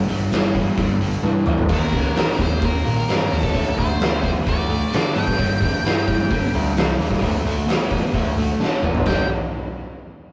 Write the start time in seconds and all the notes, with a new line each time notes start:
0.08 G1 G2 D3, open hi-hat
0.31 G1 G2 E3, snare, open hi-hat
0.45 snare
0.54 G2 E3, kick, open hi-hat
0.77 G1 G2 D3, kick, open hi-hat
1.01 G2 D3, open hi-hat
1.23 G2 E3, high tom
1.46 D2 G2 E3, mid tom
1.58 floor tom
1.69 D#2 D#3 A#3, kick, open hi-hat, crash
1.73 A#4
1.92 C#2 D#3 A#3, kick, open hi-hat
2.16 D#3 C4, snare, open hi-hat
2.30 snare
2.39 D#2 D#3 C4 C5, kick, open hi-hat
2.62 D#2 D#3 A#3 A#4, kick, open hi-hat
2.84 A#2 D#3 A#3, open hi-hat
3.08 G2 D#3 C4, snare, open hi-hat
3.31 D#2 D#3 C4 A4, open hi-hat
3.43 kick, snare
3.54 D2 D3 A3, kick, open hi-hat
3.77 D2 D3 A3 C5, kick, open hi-hat
4.00 D2 D3 B3, snare, open hi-hat
4.23 D3 B3 C5, kick, open hi-hat
4.45 D2 D3 A3 D5, kick, open hi-hat
4.69 D3 A3, open hi-hat
4.92 D3 B3 D5, snare, open hi-hat
5.15 G2 D3 B3 G5, open hi-hat
5.27 kick, snare
5.38 G1 G2 D3, kick, open hi-hat
5.60 F1 G2 D3, kick, open hi-hat
5.84 G2 E3, snare, open hi-hat
6.08 G1 G2 E3, kick, open hi-hat
6.30 G1 G2 D3, kick, open hi-hat
6.54 D2 G2 D3, open hi-hat
6.76 C2 G2 E3, snare, open hi-hat
6.99 D#2 G2 E3, open hi-hat
7.11 kick, snare
7.22 D2 D3 A3, kick, open hi-hat
7.44 D2 D3 A3, open hi-hat
7.67 D2 D3 B3, snare, open hi-hat
7.91 D3 B3, kick, open hi-hat
8.14 D2 D3 A3, kick, open hi-hat
8.37 D3 A3, open hi-hat
8.60 D3 B3, snare
8.82 F#1 D3 B3, mid tom
8.95 floor tom
9.06 G1 G2 D3 G3 G5, kick, snare, crash